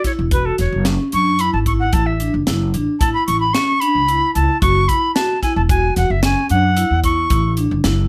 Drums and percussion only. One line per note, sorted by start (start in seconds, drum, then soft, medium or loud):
0.04 kick medium
0.04 snare soft
0.04 closed hi-hat medium
0.31 kick loud
0.31 closed hi-hat medium
0.58 snare soft
0.58 closed hi-hat medium
0.85 snare loud
0.85 closed hi-hat medium
1.12 closed hi-hat medium
1.39 closed hi-hat medium
1.66 kick medium
1.66 closed hi-hat medium
1.93 kick loud
1.93 closed hi-hat medium
2.20 closed hi-hat medium
2.47 snare loud
2.47 closed hi-hat medium
2.74 closed hi-hat medium
3.01 kick loud
3.01 closed hi-hat medium
3.28 closed hi-hat medium
3.55 snare loud
3.55 closed hi-hat medium
3.81 closed hi-hat medium
4.08 closed hi-hat medium
4.35 closed hi-hat medium
4.62 kick loud
4.62 closed hi-hat medium
4.89 kick medium
4.89 closed hi-hat medium
5.16 snare loud
5.16 closed hi-hat medium
5.43 kick medium
5.43 snare soft
5.43 closed hi-hat medium
5.69 kick loud
5.69 closed hi-hat medium
5.96 snare soft
5.96 closed hi-hat medium
6.23 snare loud
6.23 closed hi-hat medium
6.50 closed hi-hat medium
6.77 closed hi-hat medium
7.04 kick medium
7.04 closed hi-hat medium
7.30 kick loud
7.30 closed hi-hat medium
7.57 closed hi-hat medium
7.84 snare loud
7.84 closed hi-hat medium